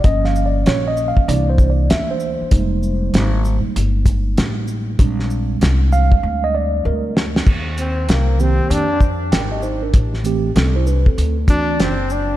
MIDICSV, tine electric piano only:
0, 0, Header, 1, 2, 480
1, 0, Start_track
1, 0, Key_signature, -3, "major"
1, 0, Tempo, 618557
1, 34, Time_signature, 4, 2, 24, 8
1, 9598, End_track
2, 0, Start_track
2, 0, Title_t, "Tine electric piano"
2, 0, Program_c, 0, 4
2, 30, Note_on_c, 0, 53, 60
2, 34, Note_on_c, 0, 75, 109
2, 35, Note_on_c, 0, 58, 52
2, 40, Note_on_c, 0, 61, 60
2, 196, Note_on_c, 0, 77, 86
2, 199, Note_off_c, 0, 75, 0
2, 356, Note_on_c, 0, 74, 81
2, 360, Note_off_c, 0, 77, 0
2, 504, Note_off_c, 0, 74, 0
2, 517, Note_on_c, 0, 73, 91
2, 679, Note_on_c, 0, 75, 95
2, 680, Note_off_c, 0, 73, 0
2, 838, Note_on_c, 0, 77, 87
2, 841, Note_off_c, 0, 75, 0
2, 961, Note_off_c, 0, 53, 0
2, 963, Note_off_c, 0, 58, 0
2, 966, Note_off_c, 0, 61, 0
2, 985, Note_off_c, 0, 77, 0
2, 991, Note_on_c, 0, 52, 61
2, 995, Note_on_c, 0, 58, 49
2, 997, Note_on_c, 0, 74, 93
2, 999, Note_on_c, 0, 62, 64
2, 1144, Note_off_c, 0, 74, 0
2, 1161, Note_on_c, 0, 72, 84
2, 1318, Note_on_c, 0, 74, 77
2, 1322, Note_off_c, 0, 72, 0
2, 1465, Note_off_c, 0, 74, 0
2, 1478, Note_on_c, 0, 76, 89
2, 1636, Note_on_c, 0, 72, 77
2, 1640, Note_off_c, 0, 76, 0
2, 1921, Note_off_c, 0, 52, 0
2, 1923, Note_off_c, 0, 58, 0
2, 1925, Note_off_c, 0, 62, 0
2, 1947, Note_on_c, 0, 55, 63
2, 1951, Note_on_c, 0, 56, 57
2, 1952, Note_on_c, 0, 58, 55
2, 1957, Note_on_c, 0, 63, 66
2, 2804, Note_off_c, 0, 72, 0
2, 3839, Note_off_c, 0, 55, 0
2, 3842, Note_off_c, 0, 56, 0
2, 3842, Note_off_c, 0, 58, 0
2, 3845, Note_off_c, 0, 63, 0
2, 3871, Note_on_c, 0, 55, 56
2, 3873, Note_on_c, 0, 56, 52
2, 3876, Note_on_c, 0, 60, 52
2, 3878, Note_on_c, 0, 62, 68
2, 4598, Note_on_c, 0, 77, 100
2, 4997, Note_on_c, 0, 75, 103
2, 5001, Note_off_c, 0, 77, 0
2, 5080, Note_on_c, 0, 74, 88
2, 5081, Note_off_c, 0, 75, 0
2, 5300, Note_off_c, 0, 74, 0
2, 5320, Note_on_c, 0, 70, 76
2, 5540, Note_off_c, 0, 70, 0
2, 5761, Note_off_c, 0, 55, 0
2, 5762, Note_off_c, 0, 56, 0
2, 5764, Note_off_c, 0, 60, 0
2, 5765, Note_off_c, 0, 62, 0
2, 6501, Note_on_c, 0, 51, 57
2, 6507, Note_on_c, 0, 58, 49
2, 6513, Note_on_c, 0, 60, 58
2, 6521, Note_on_c, 0, 67, 64
2, 6870, Note_off_c, 0, 51, 0
2, 6873, Note_off_c, 0, 58, 0
2, 6876, Note_off_c, 0, 60, 0
2, 6880, Note_off_c, 0, 67, 0
2, 7231, Note_on_c, 0, 79, 66
2, 7236, Note_on_c, 0, 70, 50
2, 7378, Note_off_c, 0, 79, 0
2, 7381, Note_off_c, 0, 70, 0
2, 7384, Note_on_c, 0, 75, 63
2, 7388, Note_on_c, 0, 67, 51
2, 7468, Note_off_c, 0, 75, 0
2, 7470, Note_off_c, 0, 67, 0
2, 7471, Note_on_c, 0, 72, 69
2, 7475, Note_on_c, 0, 63, 58
2, 7618, Note_off_c, 0, 72, 0
2, 7620, Note_off_c, 0, 63, 0
2, 7625, Note_on_c, 0, 70, 61
2, 7631, Note_on_c, 0, 62, 55
2, 7854, Note_off_c, 0, 70, 0
2, 7857, Note_off_c, 0, 62, 0
2, 7943, Note_on_c, 0, 52, 77
2, 7952, Note_on_c, 0, 57, 71
2, 7959, Note_on_c, 0, 60, 66
2, 7965, Note_on_c, 0, 67, 85
2, 8136, Note_off_c, 0, 52, 0
2, 8141, Note_off_c, 0, 57, 0
2, 8144, Note_off_c, 0, 60, 0
2, 8147, Note_off_c, 0, 67, 0
2, 8193, Note_on_c, 0, 69, 68
2, 8199, Note_on_c, 0, 60, 59
2, 8339, Note_off_c, 0, 69, 0
2, 8342, Note_off_c, 0, 60, 0
2, 8347, Note_on_c, 0, 72, 71
2, 8354, Note_on_c, 0, 64, 65
2, 8429, Note_off_c, 0, 72, 0
2, 8433, Note_off_c, 0, 64, 0
2, 8434, Note_on_c, 0, 71, 70
2, 8439, Note_on_c, 0, 62, 53
2, 8579, Note_off_c, 0, 71, 0
2, 8582, Note_off_c, 0, 62, 0
2, 8586, Note_on_c, 0, 69, 64
2, 8590, Note_on_c, 0, 60, 54
2, 8815, Note_off_c, 0, 69, 0
2, 8817, Note_off_c, 0, 60, 0
2, 8904, Note_on_c, 0, 52, 67
2, 8911, Note_on_c, 0, 60, 63
2, 8917, Note_on_c, 0, 62, 62
2, 8923, Note_on_c, 0, 66, 73
2, 9271, Note_off_c, 0, 52, 0
2, 9275, Note_off_c, 0, 60, 0
2, 9278, Note_off_c, 0, 62, 0
2, 9281, Note_off_c, 0, 66, 0
2, 9598, End_track
0, 0, End_of_file